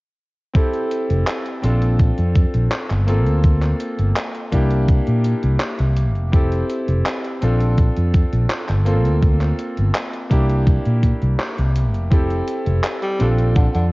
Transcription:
0.54 electric grand piano C4 E4 G4 A4, kick, closed hi-hat
0.74 closed hi-hat
0.91 closed hi-hat
1.10 fretless electric bass F1, closed hi-hat
1.27 clap, closed hi-hat
1.46 closed hi-hat
1.62 fretless electric bass A#1, electric grand piano C4 D4 F4 A4, closed hi-hat
1.82 closed hi-hat
1.99 kick, closed hi-hat
2.18 fretless electric bass F2, closed hi-hat
2.35 kick, closed hi-hat
2.54 fretless electric bass A#1, closed hi-hat
2.72 clap, closed hi-hat
2.90 fretless electric bass G1, clap, closed hi-hat
3.07 electric grand piano A#3 C4 F4 A4, closed hi-hat
3.26 fretless electric bass D2, closed hi-hat
3.44 kick, closed hi-hat
3.62 clap, closed hi-hat
3.80 closed hi-hat
3.99 fretless electric bass G1, closed hi-hat
4.16 clap, closed hi-hat
4.35 closed hi-hat
4.52 fretless electric bass C2, electric grand piano A#3 D4 E4 G4, kick, closed hi-hat
4.71 closed hi-hat
4.88 kick, closed hi-hat
5.07 fretless electric bass A#2, closed hi-hat
5.24 closed hi-hat
5.43 fretless electric bass C2, closed hi-hat
5.60 clap, closed hi-hat
5.79 fretless electric bass C2, closed hi-hat
5.97 closed hi-hat
6.16 fretless electric bass F1, closed hi-hat
6.32 electric grand piano C4 E4 G4 A4, kick, closed hi-hat
6.52 closed hi-hat
6.70 closed hi-hat
6.88 fretless electric bass F1, closed hi-hat
7.06 clap, closed hi-hat
7.24 closed hi-hat
7.41 fretless electric bass A#1, electric grand piano C4 D4 F4 A4, closed hi-hat
7.60 closed hi-hat
7.78 kick, closed hi-hat
7.96 fretless electric bass F2, closed hi-hat
8.14 kick, closed hi-hat
8.33 fretless electric bass A#1, closed hi-hat
8.50 clap, closed hi-hat
8.69 fretless electric bass G1, clap, closed hi-hat
8.85 electric grand piano A#3 C4 F4 A4, closed hi-hat
9.05 fretless electric bass D2, closed hi-hat
9.22 kick, closed hi-hat
9.41 clap, closed hi-hat
9.59 closed hi-hat
9.77 fretless electric bass G1, closed hi-hat
9.95 clap, closed hi-hat
10.14 closed hi-hat
10.30 fretless electric bass C2, electric grand piano A#3 D4 E4 G4, kick, closed hi-hat
10.50 closed hi-hat
10.67 kick, closed hi-hat
10.86 fretless electric bass A#2, closed hi-hat
11.03 kick, closed hi-hat
11.22 fretless electric bass C2, closed hi-hat
11.40 clap, closed hi-hat
11.58 fretless electric bass C2, closed hi-hat
11.75 closed hi-hat
11.94 fretless electric bass F1, closed hi-hat
12.10 electric grand piano C4 E4 G4 A4, kick, closed hi-hat
12.30 closed hi-hat
12.48 closed hi-hat
12.66 fretless electric bass F1, closed hi-hat
12.84 clap, closed hi-hat
13.02 tenor saxophone G3, closed hi-hat
13.19 fretless electric bass A#1, electric grand piano C4 D4 F4 A4, closed hi-hat
13.39 closed hi-hat
13.56 tenor saxophone D3, kick, closed hi-hat
13.74 fretless electric bass F2, tenor saxophone D3, closed hi-hat

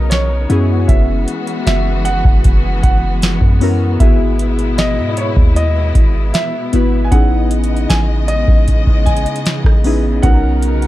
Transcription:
Already playing: 808-style bass B1, string section C#3 B3 D#4 A#4, grand piano D#5
0.10 grand piano C#5, snare, closed hi-hat
0.49 808-style bass F#2, string section E3 G#3 F#4, synth keys B3 C#4 E4 F#4 G#4, closed hi-hat
0.88 808-style bass F#1, grand piano E5, kick, closed hi-hat
1.28 closed hi-hat
1.47 closed hi-hat
1.66 808-style bass F#1, grand piano E5, snare, closed hi-hat
2.05 grand piano F#5, closed hi-hat
2.25 808-style bass F#1, kick
2.44 808-style bass F#1, kick, closed hi-hat
2.83 808-style bass F#1, grand piano F#5, kick, closed hi-hat
3.22 snare, closed hi-hat
3.41 808-style bass F#2, kick
3.60 synth keys B3 C#4 E4 F#4 A#4, open hi-hat
4.00 808-style bass G#1, string section B2 E4, synth keys B3 E4 F#4 G#4, grand piano E5, kick, closed hi-hat
4.39 closed hi-hat
4.59 closed hi-hat
4.78 grand piano D#5, snare, closed hi-hat
4.98 808-style bass G#2
5.10 grand piano D#5
5.17 grand piano C#5, closed hi-hat
5.37 808-style bass D#2, kick
5.56 grand piano D#5, closed hi-hat
5.95 808-style bass G#1, kick, closed hi-hat
6.34 grand piano E5, snare, closed hi-hat
6.73 808-style bass G#1, synth keys B3 E4 F#4 B4, closed hi-hat
7.04 grand piano G#5
7.11 808-style bass A1, string section C#3 G#3 D#5, synth keys B3 C#4 D#4 E4 G#4, grand piano F#5, kick, closed hi-hat
7.51 closed hi-hat
7.64 closed hi-hat
7.77 closed hi-hat
7.89 808-style bass A1, grand piano G#5, snare, closed hi-hat
8.28 grand piano D#5, closed hi-hat
8.48 808-style bass A1, kick
8.68 kick, closed hi-hat
8.87 kick
9.06 grand piano G#5, kick, closed hi-hat
9.16 closed hi-hat
9.26 closed hi-hat
9.36 closed hi-hat
9.46 snare, closed hi-hat
9.64 808-style bass A1, kick, cross-stick
9.84 synth keys B3 C#4 D#4 E4 G#4, open hi-hat
10.22 808-style bass B1, synth keys B3 C#4 D#4 F#4 A#4, string section D#4 A#4, grand piano F#5, kick, closed hi-hat
10.62 closed hi-hat
10.82 closed hi-hat

